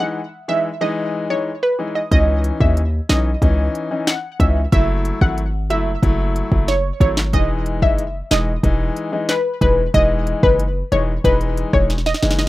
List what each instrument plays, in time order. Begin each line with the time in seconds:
0.00 grand piano E3 G#3 D#4, synth pluck F#5
0.48 grand piano E3 G#3 D#4, synth pluck E5
0.81 grand piano E3 G#3 D#4, synth pluck D#5
1.30 grand piano E3 G#3 D#4, synth pluck C#5
1.63 synth pluck B4
1.79 grand piano E3 G#3 D#4
1.95 synth pluck D#5
2.11 808-style bass C#2, grand piano E3 C#4 D#4, synth pluck D#5, kick, closed hi-hat
2.44 closed hi-hat
2.60 808-style bass D#2, grand piano E3 C#4 D#4, synth pluck E5, kick
2.77 closed hi-hat
3.09 808-style bass B1, grand piano E3 C#4 D#4, synth pluck D#5, snare, clap, closed hi-hat
3.42 808-style bass C#2, grand piano E3 C#4 D#4, kick, closed hi-hat
3.75 closed hi-hat
3.91 grand piano E3 C#4 D#4
4.07 synth pluck F#5, snare, clap, closed hi-hat
4.40 808-style bass C#2, grand piano E3 C#4 D#4, synth pluck E5, kick, closed hi-hat
4.72 808-style bass F#1, grand piano F#3 A3 E4, synth pluck E5, kick, closed hi-hat
5.05 closed hi-hat
5.21 808-style bass G#1, grand piano F#3 A3 E4, synth pluck F#5, kick
5.38 closed hi-hat
5.70 808-style bass F#1, grand piano F#3 A3 E4, synth pluck E5, closed hi-hat
6.02 808-style bass F#1, grand piano F#3 A3 E4, kick, closed hi-hat
6.36 closed hi-hat
6.51 808-style bass F#1, grand piano F#3 A3 E4, kick
6.68 synth pluck C#5, snare, closed hi-hat
7.00 808-style bass G#1, grand piano F#3 A3 E4, synth pluck C#5, kick, closed hi-hat
7.17 snare, clap
7.33 808-style bass E1, grand piano E3 G#3 D#4, synth pluck D#5, kick, closed hi-hat
7.66 closed hi-hat
7.82 808-style bass F#1, grand piano E3 G#3 D#4, synth pluck E5, kick
7.98 closed hi-hat
8.31 808-style bass E1, grand piano E3 G#3 D#4, synth pluck D#5, snare, clap, closed hi-hat
8.63 808-style bass E1, grand piano E3 G#3 D#4, kick, closed hi-hat
8.96 closed hi-hat
9.12 grand piano E3 G#3 D#4
9.29 synth pluck B4, snare, clap, closed hi-hat
9.61 808-style bass E1, grand piano E3 G#3 D#4, synth pluck B4, kick, closed hi-hat
9.94 808-style bass E1, grand piano E3 G#3 D#4, synth pluck D#5, kick, closed hi-hat
10.27 closed hi-hat
10.43 808-style bass F#1, grand piano E3 G#3 D#4, synth pluck B4, kick
10.59 closed hi-hat
10.92 808-style bass E1, grand piano E3 G#3 D#4, synth pluck C#5, closed hi-hat
11.24 808-style bass E1, grand piano E3 G#3 D#4, synth pluck B4, kick, closed hi-hat
11.41 closed hi-hat
11.57 closed hi-hat
11.73 808-style bass E1, grand piano E3 G#3 D#4, synth pluck C#5, kick, cross-stick
11.90 snare, closed hi-hat
11.98 snare
12.06 synth pluck D#5, snare, closed hi-hat
12.14 snare
12.22 808-style bass F#1, grand piano E3 G#3 D#4, snare, closed hi-hat
12.31 snare
12.39 synth pluck D#5, snare